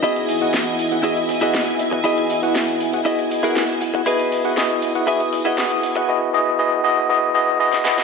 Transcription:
<<
  \new Staff \with { instrumentName = "String machine" } { \time 4/4 \key fes \lydian \tempo 4 = 119 <e' ees'' gis''>1~ | <e' ees'' gis''>1~ | <e' ees'' gis''>1 | r1 | }
  \new Staff \with { instrumentName = "Clean electric guitar" } { \time 4/4 \key fes \lydian <e' gis' dis''>4 r4 <e' gis' dis''>16 r8 <e' gis' dis''>16 r4 | <e' gis' dis''>4 r4 <e' gis' dis''>16 r8 <e' gis' bes'>16 r4 | <e' gis' b'>4 r4 <e' gis' e''>16 r8 <e' gis' dis''>16 r4 | r1 | }
  \new Staff \with { instrumentName = "Tine electric piano" } { \time 4/4 \key fes \lydian <b e' ges' gis' dis''>8. <b e' ges' gis' ges''>4 <b e' ges' gis' ges''>16 <b e' ges' gis' dis''>8. <b e' ges' gis' ges''>4 <b e' ges' gis' ges''>16 | <b e' ges' gis' dis''>8. <b e' ges' gis' ges''>4 <b e' ges' gis' ges''>16 <b e' ges' gis' dis''>8. <b e' ges' gis' ges''>4 <b e' ges' gis' ges''>16 | <b e' ges' gis' dis''>8. <b e' ges' gis' ges''>16 <b e' ges' gis' dis''>8. <b e' ges' gis' ges''>16 <b e' ges' gis' dis'''>8. <b e' ges' gis' ges''>16 <b e' ges' gis' dis'''>8. <b e' ges' gis' ges''>16 | <b e' ges' gis' dis''>8 <b e' ges' gis' dis''>8 <b e' ges' gis' dis''>8 <b e' ges' gis' dis''>8 <b e' ges' gis' dis''>8 <b e' ges' gis' dis''>8 <b e' ges' gis' dis''>8 <b e' ges' gis' dis''>8 | }
  \new DrumStaff \with { instrumentName = "Drums" } \drummode { \time 4/4 hh16 hh16 hho16 hh16 <hh sn>16 hh16 hho16 hh16 hh16 hh16 hho16 hh16 <hh sn>16 hh16 hho16 hh16 | hh16 hh16 hho16 hh16 <hh sn>16 hh16 hho16 hh16 hh16 hh16 hho16 hh16 <hh sn>16 hh16 hho16 hh16 | hh16 hh16 hho16 hh16 <hh sn>16 hh16 hho16 hh16 hh16 hh16 hho16 hh16 <hh sn>16 hh16 hho16 hh16 | r4 r4 r4 r16 sn16 sn16 sn16 | }
>>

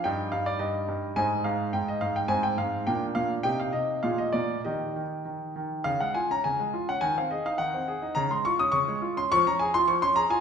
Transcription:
<<
  \new Staff \with { instrumentName = "Grand piano" } { \time 2/4 \key ees \major \tempo 4 = 104 << { g''8 f''16 d''16 ees''4 | aes''8 f''8 g''16 ees''16 f''16 g''16 | aes''16 g''16 f''8 g''8 f''8 | g''16 f''16 ees''8 f''16 ees''16 d''8 |
ees''4 r4 | \key des \major f''16 ges''16 aes''16 bes''16 aes''8. ges''16 | aes''16 f''16 ees''16 f''16 ges''4 | bes''16 c'''16 des'''16 ees'''16 des'''8. c'''16 |
des'''16 bes''16 aes''16 c'''16 des'''16 c'''16 bes''16 aes''16 | } \\ { <ees' g'>2 | <ees' c''>2 | <c' c''>4 <d' bes'>4 | <ees' g'>4 <f' aes'>4 |
<ees' g'>2 | r2 | r2 | r2 |
r2 | } >> }
  \new Staff \with { instrumentName = "Grand piano" } { \clef bass \time 2/4 \key ees \major g,8 g,8 g,8 g,8 | aes,8 aes,8 aes,8 aes,8 | aes,8 aes,8 bes,8 bes,8 | c8 c8 bes,8 bes,8 |
ees8 ees8 ees8 ees8 | \key des \major des16 aes16 f'16 des'16 des16 aes16 f'16 des'16 | ees16 c'16 aes'16 ees'16 ees16 c'16 aes'16 ees'16 | des16 aes16 f'16 des'16 des16 aes16 f'16 des'16 |
f16 des'16 aes'16 f'16 f16 des'16 aes'16 f'16 | }
>>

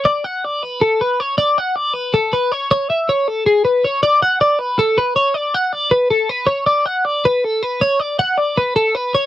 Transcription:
\new Staff \with { instrumentName = "Clean electric guitar" } { \time 7/8 \key b \dorian \tempo 4 = 158 d''8 fis''8 d''8 b'8 a'8 b'8 cis''8 | d''8 fis''8 d''8 b'8 a'8 b'8 cis''8 | cis''8 e''8 cis''8 a'8 gis'8 b'8 cis''8 | d''8 fis''8 d''8 b'8 a'8 b'8 cis''8 |
d''8 fis''8 d''8 b'8 a'8 b'8 cis''8 | d''8 fis''8 d''8 b'8 a'8 b'8 cis''8 | d''8 fis''8 d''8 b'8 a'8 b'8 cis''8 | }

